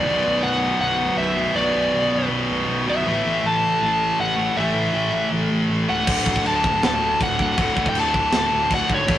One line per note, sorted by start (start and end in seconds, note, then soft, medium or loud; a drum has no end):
0.00 0.44 D5 medium
0.04 0.20 B0 loud
0.04 1.35 B1 loud
0.04 1.36 F#2 loud
0.04 1.34 B2 loud
0.04 3.04 D3 medium
0.04 3.04 B3 medium
0.04 3.04 F#4 medium
0.04 3.04 B4 medium
0.25 0.39 B0 medium
0.43 0.71 B0 medium
0.43 0.78 F#5 loud
0.81 1.09 B0 loud
0.81 1.17 F#5 loud
1.17 1.46 B0 medium
1.17 1.57 E5 medium
1.35 1.55 F#2 medium
1.35 1.54 B2 medium
1.39 1.53 B1 medium
1.54 1.70 B0 loud
1.54 2.85 B1 loud
1.54 2.86 F#2 loud
1.54 2.27 D5 medium
1.58 2.85 B2 loud
1.75 1.89 B0 medium
1.94 2.08 B0 medium
2.12 2.27 B0 medium
2.30 2.45 B0 loud
2.50 2.64 B0 medium
2.68 2.83 B0 medium
2.87 3.06 B0 medium
2.87 3.05 B1 medium
2.87 3.05 F#2 medium
2.87 3.05 B2 medium
2.87 3.47 E5 medium
3.05 3.20 A1 loud
3.05 4.36 A2 medium
3.05 6.06 C#3 medium
3.05 4.37 E3 loud
3.05 9.18 A3 medium
3.05 4.36 A3 loud
3.05 6.05 E4 medium
3.05 9.18 A4 medium
3.25 3.40 A1 medium
3.44 3.73 A1 loud
3.44 3.80 A5 loud
3.82 4.11 A1 loud
3.82 4.20 A5 loud
4.20 4.48 A1 medium
4.20 4.58 F#5 medium
4.36 4.55 A2 medium
4.36 4.56 E3 medium
4.36 4.59 A3 medium
4.56 4.71 A1 loud
4.56 5.87 A2 medium
4.56 5.88 E3 loud
4.56 5.88 A3 loud
4.56 5.28 E5 medium
4.75 4.89 A1 medium
4.94 5.08 A1 medium
5.13 5.28 A1 medium
5.32 5.46 A1 medium
5.50 5.65 A1 loud
5.70 5.84 A1 medium
5.88 6.03 C#1 medium
5.88 6.07 A2 medium
5.88 6.07 E3 medium
5.88 6.11 A3 medium
5.88 6.46 F#5 loud
6.06 6.22 D1 medium
6.06 7.38 D2 medium
6.06 7.39 A2 loud
6.06 9.05 D3 medium
6.06 9.05 F#4 medium
6.06 kick loud
6.06 crash loud
6.06 china medium
6.11 7.37 D3 loud
6.26 6.41 D1 medium
6.26 kick medium
6.36 kick medium
6.45 6.74 D1 medium
6.45 6.81 A5 loud
6.45 china medium
6.64 kick loud
6.83 7.12 D1 loud
6.83 7.19 A5 loud
6.83 snare loud
6.83 china medium
7.21 7.50 D1 medium
7.21 7.40 F#5 medium
7.21 kick medium
7.21 china medium
7.38 7.57 A2 medium
7.38 7.56 D3 medium
7.38 7.89 F#5 loud
7.38 kick medium
7.42 7.56 D2 medium
7.57 7.72 D1 loud
7.57 8.89 D2 loud
7.57 8.90 A2 loud
7.57 8.88 D3 loud
7.57 kick loud
7.57 china medium
7.77 7.91 D1 medium
7.77 kick medium
7.86 7.96 G5 medium
7.86 kick medium
7.95 8.11 D1 medium
7.95 china medium
8.00 8.36 A5 medium
8.14 8.29 D1 medium
8.14 kick medium
8.32 8.49 D1 medium
8.32 snare loud
8.32 china medium
8.37 8.74 A5 loud
8.53 8.67 D1 medium
8.71 8.85 D1 medium
8.71 8.90 F#5 medium
8.71 kick medium
8.71 china medium
8.89 9.04 G#1 medium
8.89 9.07 D2 medium
8.89 9.06 A2 medium
8.89 9.07 D3 medium
8.89 kick medium
8.94 9.18 C#5 loud
9.07 9.18 A1 loud
9.07 9.18 A2 loud
9.07 9.18 C#3 medium
9.07 9.18 E3 loud
9.07 9.18 A3 loud
9.07 9.18 E4 medium
9.07 kick loud
9.07 china medium